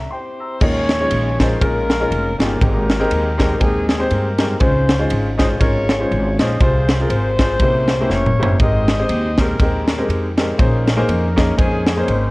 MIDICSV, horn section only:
0, 0, Header, 1, 2, 480
1, 0, Start_track
1, 0, Tempo, 498753
1, 590, Time_signature, 4, 2, 24, 8
1, 11844, End_track
2, 0, Start_track
2, 0, Title_t, "Horn section"
2, 0, Program_c, 0, 61
2, 106, Note_on_c, 0, 67, 67
2, 110, Note_on_c, 0, 64, 59
2, 121, Note_on_c, 0, 60, 84
2, 121, Note_on_c, 0, 72, 91
2, 555, Note_off_c, 0, 67, 0
2, 558, Note_off_c, 0, 64, 0
2, 563, Note_off_c, 0, 60, 0
2, 563, Note_off_c, 0, 72, 0
2, 589, Note_on_c, 0, 65, 84
2, 592, Note_on_c, 0, 68, 88
2, 601, Note_on_c, 0, 61, 103
2, 601, Note_on_c, 0, 73, 112
2, 1347, Note_on_c, 0, 58, 89
2, 1347, Note_on_c, 0, 70, 97
2, 1353, Note_off_c, 0, 61, 0
2, 1353, Note_off_c, 0, 73, 0
2, 1514, Note_off_c, 0, 65, 0
2, 1516, Note_off_c, 0, 68, 0
2, 1531, Note_off_c, 0, 58, 0
2, 1531, Note_off_c, 0, 70, 0
2, 1541, Note_on_c, 0, 65, 75
2, 1542, Note_on_c, 0, 61, 71
2, 1543, Note_on_c, 0, 58, 102
2, 1543, Note_on_c, 0, 70, 111
2, 2266, Note_off_c, 0, 58, 0
2, 2266, Note_off_c, 0, 70, 0
2, 2292, Note_on_c, 0, 58, 101
2, 2292, Note_on_c, 0, 63, 79
2, 2292, Note_on_c, 0, 70, 110
2, 2296, Note_on_c, 0, 67, 82
2, 2471, Note_off_c, 0, 65, 0
2, 2472, Note_off_c, 0, 61, 0
2, 3430, Note_off_c, 0, 58, 0
2, 3430, Note_off_c, 0, 63, 0
2, 3430, Note_off_c, 0, 70, 0
2, 3432, Note_off_c, 0, 67, 0
2, 3473, Note_on_c, 0, 56, 86
2, 3473, Note_on_c, 0, 68, 93
2, 3478, Note_on_c, 0, 63, 62
2, 3480, Note_on_c, 0, 60, 72
2, 3720, Note_off_c, 0, 56, 0
2, 3720, Note_off_c, 0, 68, 0
2, 3731, Note_on_c, 0, 56, 86
2, 3731, Note_on_c, 0, 68, 93
2, 3933, Note_off_c, 0, 56, 0
2, 3933, Note_off_c, 0, 68, 0
2, 3935, Note_off_c, 0, 63, 0
2, 3942, Note_on_c, 0, 58, 83
2, 3942, Note_on_c, 0, 70, 91
2, 3946, Note_on_c, 0, 63, 63
2, 3948, Note_on_c, 0, 67, 72
2, 4399, Note_off_c, 0, 63, 0
2, 4400, Note_off_c, 0, 67, 0
2, 4402, Note_off_c, 0, 60, 0
2, 4428, Note_on_c, 0, 60, 90
2, 4428, Note_on_c, 0, 72, 98
2, 4431, Note_off_c, 0, 58, 0
2, 4431, Note_off_c, 0, 70, 0
2, 4433, Note_on_c, 0, 65, 66
2, 4434, Note_on_c, 0, 63, 67
2, 4898, Note_off_c, 0, 60, 0
2, 4898, Note_off_c, 0, 72, 0
2, 5179, Note_off_c, 0, 63, 0
2, 5179, Note_on_c, 0, 63, 91
2, 5179, Note_on_c, 0, 75, 99
2, 5275, Note_off_c, 0, 63, 0
2, 5275, Note_off_c, 0, 75, 0
2, 5359, Note_off_c, 0, 65, 0
2, 5397, Note_on_c, 0, 61, 101
2, 5397, Note_on_c, 0, 73, 110
2, 5403, Note_on_c, 0, 65, 83
2, 5405, Note_on_c, 0, 68, 75
2, 6115, Note_off_c, 0, 61, 0
2, 6115, Note_off_c, 0, 73, 0
2, 6154, Note_on_c, 0, 63, 90
2, 6154, Note_on_c, 0, 75, 98
2, 6323, Note_off_c, 0, 65, 0
2, 6325, Note_off_c, 0, 68, 0
2, 6360, Note_off_c, 0, 63, 0
2, 6360, Note_off_c, 0, 75, 0
2, 6363, Note_on_c, 0, 60, 94
2, 6363, Note_on_c, 0, 68, 70
2, 6363, Note_on_c, 0, 72, 102
2, 6368, Note_on_c, 0, 65, 76
2, 6828, Note_off_c, 0, 68, 0
2, 6832, Note_off_c, 0, 60, 0
2, 6832, Note_off_c, 0, 72, 0
2, 6834, Note_off_c, 0, 65, 0
2, 6839, Note_on_c, 0, 68, 78
2, 6843, Note_on_c, 0, 60, 99
2, 6843, Note_on_c, 0, 72, 108
2, 6846, Note_on_c, 0, 65, 70
2, 7761, Note_off_c, 0, 68, 0
2, 7763, Note_off_c, 0, 60, 0
2, 7763, Note_off_c, 0, 72, 0
2, 7764, Note_off_c, 0, 65, 0
2, 7789, Note_on_c, 0, 70, 67
2, 7790, Note_on_c, 0, 64, 64
2, 7796, Note_on_c, 0, 61, 89
2, 7796, Note_on_c, 0, 73, 97
2, 8240, Note_off_c, 0, 70, 0
2, 8241, Note_off_c, 0, 64, 0
2, 8261, Note_on_c, 0, 67, 82
2, 8262, Note_on_c, 0, 72, 83
2, 8270, Note_on_c, 0, 63, 92
2, 8270, Note_on_c, 0, 75, 100
2, 8277, Note_off_c, 0, 61, 0
2, 8277, Note_off_c, 0, 73, 0
2, 9028, Note_off_c, 0, 63, 0
2, 9028, Note_off_c, 0, 75, 0
2, 9036, Note_on_c, 0, 58, 82
2, 9036, Note_on_c, 0, 70, 89
2, 9190, Note_off_c, 0, 67, 0
2, 9191, Note_off_c, 0, 72, 0
2, 9239, Note_off_c, 0, 58, 0
2, 9239, Note_off_c, 0, 70, 0
2, 9240, Note_on_c, 0, 63, 61
2, 9243, Note_on_c, 0, 67, 62
2, 9255, Note_on_c, 0, 58, 70
2, 9255, Note_on_c, 0, 70, 76
2, 9677, Note_off_c, 0, 58, 0
2, 9677, Note_off_c, 0, 70, 0
2, 9984, Note_off_c, 0, 63, 0
2, 9993, Note_on_c, 0, 58, 89
2, 9993, Note_on_c, 0, 70, 96
2, 9996, Note_on_c, 0, 61, 78
2, 9996, Note_on_c, 0, 63, 75
2, 10160, Note_off_c, 0, 67, 0
2, 11116, Note_off_c, 0, 58, 0
2, 11116, Note_off_c, 0, 70, 0
2, 11118, Note_off_c, 0, 61, 0
2, 11118, Note_off_c, 0, 63, 0
2, 11144, Note_on_c, 0, 61, 76
2, 11146, Note_on_c, 0, 60, 71
2, 11154, Note_on_c, 0, 56, 90
2, 11154, Note_on_c, 0, 68, 98
2, 11419, Note_off_c, 0, 56, 0
2, 11419, Note_off_c, 0, 68, 0
2, 11431, Note_on_c, 0, 56, 88
2, 11431, Note_on_c, 0, 68, 96
2, 11620, Note_off_c, 0, 56, 0
2, 11620, Note_off_c, 0, 68, 0
2, 11636, Note_on_c, 0, 63, 68
2, 11641, Note_on_c, 0, 68, 76
2, 11644, Note_off_c, 0, 60, 0
2, 11644, Note_on_c, 0, 60, 94
2, 11644, Note_on_c, 0, 72, 102
2, 11844, Note_off_c, 0, 60, 0
2, 11844, Note_off_c, 0, 61, 0
2, 11844, Note_off_c, 0, 63, 0
2, 11844, Note_off_c, 0, 68, 0
2, 11844, Note_off_c, 0, 72, 0
2, 11844, End_track
0, 0, End_of_file